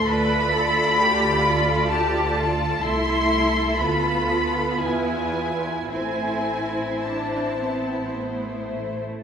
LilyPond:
<<
  \new Staff \with { instrumentName = "Violin section" } { \time 3/4 \key a \minor \tempo 4 = 59 b''2 a''4 | c'''4 b''4 gis''4 | gis''4 a''4 r4 | }
  \new Staff \with { instrumentName = "Violin section" } { \time 3/4 \key a \minor << { d''2. | e''4 b'2 | c''2. | } \\ { a'2. | a'2 e'4~ | e'2. | } >> }
  \new Staff \with { instrumentName = "Cello section" } { \time 3/4 \key a \minor b'8 a'8 g'8 f'8 g'8 f'8 | e'4 f'4 e'4 | c'4. b8 a4 | }
  \new Staff \with { instrumentName = "Viola section" } { \time 3/4 \key a \minor <a f'>2. | <a e'>4 <b f'>2 | <a e'>4 d'8 c'8 b8 a8 | }
  \new Staff \with { instrumentName = "Double bass section" } { \clef bass \time 3/4 \key a \minor d,2. | c,4 d,4 e,4 | a,,2. | }
>>